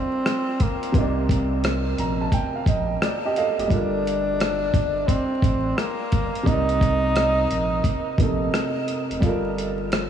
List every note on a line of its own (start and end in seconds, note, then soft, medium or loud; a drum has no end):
0.00 0.89 G3 medium
0.00 0.64 C4 medium
0.00 0.90 F4 medium
0.00 0.91 A4 medium
0.00 0.93 A#4 medium
0.00 0.97 D#5 soft
0.26 cross-stick loud
0.26 closed hi-hat medium
0.60 1.30 A#3 medium
0.60 kick medium
0.60 closed hi-hat medium
0.83 closed hi-hat soft
0.92 1.94 C2 medium
0.92 3.65 C3 medium
0.92 3.67 A#3 medium
0.92 kick medium
0.92 closed hi-hat medium
0.98 3.68 D#4 medium
0.98 3.00 D5 medium
1.29 kick medium
1.29 closed hi-hat medium
1.64 cross-stick loud
1.64 closed hi-hat medium
1.98 2.29 A#1 medium
1.98 2.19 A#5 medium
1.98 closed hi-hat medium
2.21 2.33 A5 medium
2.32 2.54 G5 medium
2.32 kick medium
2.32 closed hi-hat medium
2.55 2.67 F5 medium
2.66 2.97 A#1 medium
2.66 3.00 D#5 medium
2.66 kick loud
2.66 closed hi-hat medium
3.02 3.35 D5 medium
3.02 cross-stick loud
3.02 closed hi-hat medium
3.25 3.37 G4 medium
3.25 3.36 D#5 medium
3.36 3.58 A4 medium
3.36 3.58 D#5 medium
3.36 3.58 F5 medium
3.36 closed hi-hat medium
3.59 3.70 F1 medium
3.59 3.92 G4 soft
3.59 3.91 D#5 medium
3.59 closed hi-hat soft
3.68 4.70 G1 loud
3.68 6.41 G3 medium
3.68 6.42 F4 medium
3.68 kick medium
3.68 closed hi-hat medium
3.72 5.09 D4 loud
3.72 6.44 A4 medium
3.72 6.45 A#4 medium
4.07 closed hi-hat medium
4.40 cross-stick loud
4.40 closed hi-hat medium
4.74 5.05 G1 medium
4.74 kick medium
4.74 closed hi-hat medium
5.08 5.79 C4 medium
5.08 kick medium
5.08 closed hi-hat medium
5.42 5.73 A1 loud
5.42 kick loud
5.42 closed hi-hat medium
5.78 6.49 A#3 loud
5.78 cross-stick loud
5.78 closed hi-hat medium
6.12 6.32 G1 medium
6.12 kick medium
6.12 closed hi-hat medium
6.35 closed hi-hat soft
6.43 7.46 C2 medium
6.43 8.14 C3 medium
6.43 8.15 A#3 medium
6.43 8.54 D#4 loud
6.43 kick loud
6.43 closed hi-hat medium
6.49 8.17 D#4 medium
6.49 8.18 D5 medium
6.69 closed hi-hat soft
6.81 kick medium
6.81 closed hi-hat medium
7.16 cross-stick loud
7.16 closed hi-hat medium
7.51 7.81 A#1 medium
7.51 closed hi-hat medium
7.84 kick medium
7.84 closed hi-hat medium
8.18 8.49 A#1 medium
8.18 9.22 C3 soft
8.18 9.23 A#3 soft
8.18 9.23 D#4 soft
8.18 kick medium
8.18 closed hi-hat medium
8.22 9.24 A4 medium
8.54 cross-stick loud
8.54 closed hi-hat medium
8.88 closed hi-hat medium
9.11 9.22 F1 medium
9.11 closed hi-hat soft
9.20 10.10 G1 medium
9.20 10.10 G3 medium
9.20 10.10 F4 medium
9.20 kick medium
9.20 closed hi-hat medium
9.25 10.10 A4 medium
9.25 10.10 A#4 medium
9.58 closed hi-hat medium
9.92 cross-stick loud
9.92 closed hi-hat medium